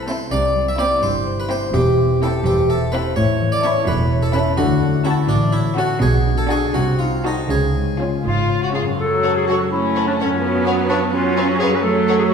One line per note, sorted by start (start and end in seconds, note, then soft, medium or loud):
0.00 0.17 C2 medium
0.00 0.16 C3 medium
0.00 0.30 C3 soft
0.00 0.34 A3 soft
0.00 0.78 E4 soft
0.00 1.26 C5 soft
0.07 0.25 C4 soft
0.07 0.25 E4 soft
0.07 0.33 A4 soft
0.07 0.30 C5 medium
0.07 0.25 A5 soft
0.31 0.89 C2 medium
0.31 0.88 C3 medium
0.31 1.76 C3 soft
0.31 0.65 D5 medium
0.56 3.18 G3 soft
0.68 0.79 E5 medium
0.79 0.97 C4 soft
0.79 0.97 E4 soft
0.79 3.63 E4 soft
0.79 1.01 D5 medium
0.79 0.97 G5 soft
1.02 1.60 G1 medium
1.02 1.59 G2 medium
1.02 1.49 G4 soft
1.02 1.36 C5 medium
1.27 2.45 C5 soft
1.40 1.50 B4 medium
1.49 1.68 C4 soft
1.49 1.67 E4 soft
1.49 2.21 G4 soft
1.49 1.73 C5 medium
1.49 1.68 G5 soft
1.73 2.31 E1 medium
1.73 2.30 E2 medium
1.73 3.18 E3 soft
1.73 2.18 G4 medium
1.99 3.19 C4 soft
2.22 2.40 C4 soft
2.22 2.40 E4 medium
2.22 3.19 G4 soft
2.22 2.44 A4 medium
2.22 2.40 G5 medium
2.44 3.02 E1 medium
2.44 3.01 E2 medium
2.44 2.68 G4 medium
2.44 2.92 C5 soft
2.69 2.91 A4 medium
2.69 4.60 E5 soft
2.92 3.11 C4 medium
2.92 3.11 E4 medium
2.92 3.14 B4 medium
2.92 3.18 C5 soft
2.92 3.10 G5 medium
3.16 3.73 A1 medium
3.16 3.73 A2 medium
3.16 4.60 A2 medium
3.16 3.49 C#5 medium
3.41 4.60 E3 soft
3.52 3.63 D5 medium
3.62 3.82 C#4 medium
3.62 3.81 E4 medium
3.62 4.60 E4 soft
3.62 3.86 C#5 medium
3.62 3.80 A5 medium
3.87 4.44 E1 medium
3.87 4.43 E2 medium
3.87 4.34 A4 soft
3.87 4.20 B4 medium
4.12 5.53 C#5 soft
4.23 4.34 A4 medium
4.33 4.52 C#4 medium
4.33 4.52 E4 medium
4.33 5.29 A4 soft
4.33 4.56 B4 medium
4.33 4.52 A5 medium
4.57 5.15 D2 medium
4.57 5.14 D3 medium
4.57 6.04 D3 medium
4.57 5.02 F#4 medium
4.82 6.03 A3 soft
5.05 5.23 C#4 medium
5.05 5.27 E4 medium
5.05 5.23 F#4 medium
5.05 6.50 F#4 soft
5.05 5.23 A5 medium
5.28 5.87 A1 medium
5.28 5.86 A2 medium
5.28 5.51 D4 medium
5.28 5.77 A4 medium
5.53 5.75 E4 medium
5.53 6.04 C#5 soft
5.76 5.95 C#4 medium
5.76 5.94 F#4 medium
5.76 6.00 F#4 medium
5.76 6.04 A4 soft
5.76 5.95 A5 medium
6.01 6.59 B1 medium
6.01 6.59 B2 medium
6.01 6.77 B2 medium
6.01 6.35 G#4 medium
6.26 6.77 D4 soft
6.38 6.49 A4 medium
6.50 6.68 D4 medium
6.50 6.68 F#4 medium
6.50 7.24 F#4 soft
6.50 6.73 G#4 medium
6.50 6.77 G#4 soft
6.50 6.69 G#5 medium
6.74 7.35 C2 medium
6.74 7.35 C3 medium
6.74 7.53 C3 medium
6.74 6.98 F#4 medium
6.99 7.53 D#4 soft
6.99 7.23 F4 medium
7.23 7.44 D#4 soft
7.23 7.50 D#4 medium
7.23 7.53 F#4 soft
7.23 7.45 F#4 soft
7.23 7.53 A4 soft
7.23 7.43 A5 soft
7.50 8.10 C#2 medium
7.50 8.10 C#3 medium
7.50 9.02 C#3 soft
7.50 8.21 G#4 medium
7.76 9.02 G#3 soft
7.98 8.19 C#4 soft
7.98 8.18 F4 soft
7.98 9.02 F4 soft
7.98 8.18 G#5 soft
8.25 8.85 G#1 soft
8.25 8.85 G#2 soft
8.25 8.60 F4 medium
8.25 8.60 F4 soft
8.25 8.73 G#4 soft
8.50 12.34 C#5 soft
8.63 8.73 F#4 soft
8.63 8.68 F#4 soft
8.73 8.93 C#4 soft
8.73 8.83 F4 soft
8.73 8.85 G#4 soft
8.73 9.01 G#4 soft
8.73 8.93 G#5 soft
8.82 10.24 F#2 soft
8.86 10.28 C#4 soft
8.90 10.40 F#4 soft
8.95 9.60 F#3 medium
8.95 10.42 A4 soft
9.00 9.36 A4 medium
9.23 9.32 A4 soft
9.23 9.31 C#5 soft
9.23 9.31 F#5 soft
9.37 9.47 G#4 medium
9.46 9.58 F#4 medium
9.46 9.57 A4 soft
9.46 9.57 C#5 soft
9.46 9.54 F#5 soft
9.71 10.39 A3 soft
9.71 10.31 C#4 soft
9.71 10.06 E4 medium
9.95 10.04 A4 soft
9.95 10.04 C#5 soft
9.95 10.03 F#5 soft
10.08 10.13 D4 medium
10.19 10.65 C#4 medium
10.19 10.28 A4 soft
10.19 10.28 C#5 soft
10.19 10.27 F#5 soft
10.25 11.64 F#2 soft
10.30 11.68 C#4 soft
10.34 11.81 F4 soft
10.39 11.01 F#3 soft
10.39 11.11 B3 medium
10.39 11.84 B4 soft
10.66 10.77 B3 medium
10.66 10.74 B4 soft
10.66 10.73 C#5 soft
10.66 10.75 F5 soft
10.89 11.00 D4 medium
10.89 10.97 B4 soft
10.89 10.97 C#5 soft
10.89 10.99 F5 soft
11.12 11.72 F#3 medium
11.12 11.82 C#4 medium
11.12 11.50 F4 medium
11.37 11.44 B4 soft
11.37 11.44 C#5 soft
11.37 11.44 F5 soft
11.49 11.58 F#4 medium
11.58 11.77 G#4 medium
11.58 11.69 B4 soft
11.58 11.69 C#5 soft
11.58 11.69 F5 soft
11.65 12.34 F#2 soft
11.69 12.34 C#4 soft
11.74 12.34 F#4 soft
11.74 11.84 B4 medium
11.79 12.34 A4 soft
11.79 12.18 A4 medium
11.83 12.34 F#3 medium
11.83 12.34 A3 medium
12.07 12.16 A4 soft
12.07 12.16 C#5 soft
12.07 12.15 F#5 soft
12.19 12.24 G#4 medium
12.30 12.34 F#4 medium